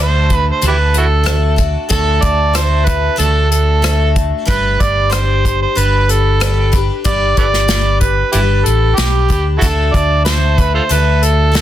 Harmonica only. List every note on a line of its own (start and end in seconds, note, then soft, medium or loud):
0.02 0.45 C5 medium
0.52 0.64 C5 medium
0.68 0.76 E4 medium
0.68 0.76 G4 medium
0.68 0.95 B4 medium
0.98 1.06 E4 soft
0.98 1.05 F#4 soft
0.98 1.56 A4 medium
1.90 2.24 A4 medium
2.23 2.57 D5 medium
2.55 2.86 C5 medium
2.84 3.17 B4 medium
3.18 3.49 A4 medium
3.51 4.12 A4 medium
4.48 4.83 B4 medium
4.81 5.13 D5 medium
5.11 5.60 C5 medium
5.62 5.80 C5 medium
5.78 6.12 B4 medium
6.10 6.74 A4 medium
7.06 7.35 D5 loud
7.38 7.45 A4 medium
7.38 7.46 B4 medium
7.38 7.98 D5 loud
8.00 8.31 B4 medium
8.32 8.41 E4 medium
8.32 8.39 G4 medium
8.32 8.66 B4 medium
8.65 8.97 A4 medium
8.96 9.45 G4 medium
9.58 9.65 E4 medium
9.58 9.66 F#4 medium
9.58 9.95 A4 medium
9.94 10.24 D5 medium
10.25 10.59 C5 medium
10.59 10.70 B4 medium
10.74 10.82 F4 medium
10.74 10.82 A4 medium
10.74 10.93 C5 medium
10.91 11.25 B4 medium
11.23 11.61 A4 medium